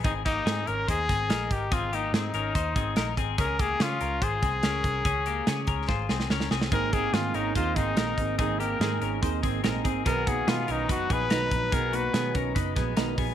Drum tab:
HH |x-x-x-x-x-x-x-x-|x-x-x-x-x-x-x-x-|x-x-x-x-x-x-x-x-|x-x-x-x---------|
SD |----o-----o-o---|----o-------o---|----o-------o---|----o---o-oooooo|
BD |o-o-----o-o---o-|o-------o-o---o-|o-o-----o-o---o-|o-----o-o-------|

HH |x-x-x-x-x-x-x-x-|x-x-x-x-x-x-x-x-|x-x-x-x-x-x-x-x-|x-x-x-x-x-x-x-o-|
SD |----o-------o---|----o-------o---|----o-------o---|----o-----o-o---|
BD |o-o-----o-o---o-|o-------o-o---o-|o-o-----o-o---o-|o-----o-o-o---o-|